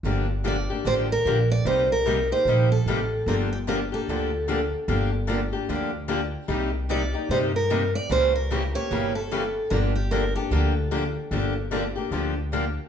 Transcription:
X:1
M:4/4
L:1/8
Q:"Swing" 1/4=149
K:Gm
V:1 name="Steel-string acoustic guitar"
z2 d2 c B2 d | c B2 c2 A3 | B G B A4- A- | A z6 z |
z2 d2 c B2 d | c ^A2 ^c2 =A3 | B G B A4- A- | A z6 z |]
V:2 name="Steel-string acoustic guitar"
[D,F,B,DG] z [D,F,B,DG] [B,DG] [D,F,B,DG] z [D,F,B,DG] z | [C,G,B,EG] z [C,G,B,EG] [B,EG] [C,G,B,EG] z [C,G,B,EG] z | [D,F,B,DG] z [D,F,B,DG] [B,DG] [D,F,B,DG] z [D,F,B,DG] z | [D,F,B,DG] z [D,F,B,DG] [B,DG] [D,F,B,DG] z [D,F,B,DG] z |
[C,G,B,EG] z [C,G,B,EG] [B,EG] [C,G,B,EG] z [C,G,B,EG] z | [^C,=E,^A,^CG] z [C,E,A,CG] [A,CG] [C,E,A,CG] z [C,E,A,CG] z | [D,F,B,DG] z [D,F,B,DG] [B,DG] [D,F,B,DG] z [D,F,B,DG] z | [D,F,B,DG] z [D,F,B,DG] [B,DG] [D,F,B,DG] z [D,F,B,DG] z |]
V:3 name="Steel-string acoustic guitar"
[D,F,B,DG] z [D,F,B,DG] z [D,F,B,DG] z [D,F,B,DG] z | [C,G,B,EG] z [C,G,B,EG] z [C,G,B,EG] z [C,G,B,EG] z | [D,F,B,DG] z [D,F,B,DG] z [D,F,B,DG] z [D,F,B,DG] z | [D,F,B,DG] z [D,F,B,DG] z [D,F,B,DG] z [D,F,B,DG] z |
[C,G,B,EG] z [C,G,B,EG] z [C,G,B,EG] z [C,G,B,EG] z | [^C,G,^A,=EG] z [C,G,A,EG] z [C,G,A,EG] z [C,G,A,EG] z | [D,F,B,DG] z [D,F,B,DG] z [D,F,B,DG] z [D,F,B,DG] z | [D,F,B,DG] z [D,F,B,DG] z [D,F,B,DG] z [D,F,B,DG] z |]
V:4 name="Upright bass" clef=bass
G,,,4 A,,,2 B,,,2 | C,,4 B,,,2 A,,,2 | G,,,4 D,,4 | G,,,4 D,,4 |
C,,4 G,,4 | ^C,,4 G,,,4 | G,,,4 D,,4 | G,,,4 D,,4 |]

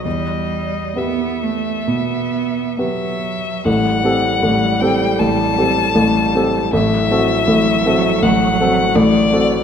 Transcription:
X:1
M:4/4
L:1/8
Q:1/4=78
K:Ador
V:1 name="Violin"
^d2 e4 e2 | f3 g a4 | e4 f2 d2 |]
V:2 name="Grand piano"
E,,2 [B,GB]2 B,,2 [B,GB]2 | [A,,,A,,] [CGA] [A,,,A,,] [CGA] [A,,,A,,] [CGA] [A,,,A,,] [CGA] | [A,,,A,,] [CFA] [A,,,A,,] [CFA] [A,,,A,,] [CFA] [A,,,A,,] [CFA] |]
V:3 name="Cello" clef=bass
G,2 B, A, B,2 F,2 | G,8 | F,8 |]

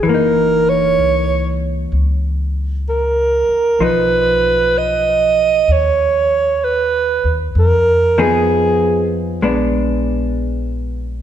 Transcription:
X:1
M:4/4
L:1/8
Q:"Swing" 1/4=64
K:Cblyd
V:1 name="Alto saxophone"
B d2 z3 B2 | =B2 ^d2 ^c2 B z | B A2 z4 z |]
V:2 name="Hollow-body jazz guitar"
[_F,B,E]8 | [F,^D]8 | z [F,CEA]3 [A,C=D]4 |]
V:3 name="Upright bass" clef=bass
G,,,2 D,,2 D,,3 z | =B,,,4 ^D,,3 D,, | F,,4 B,,,4 |]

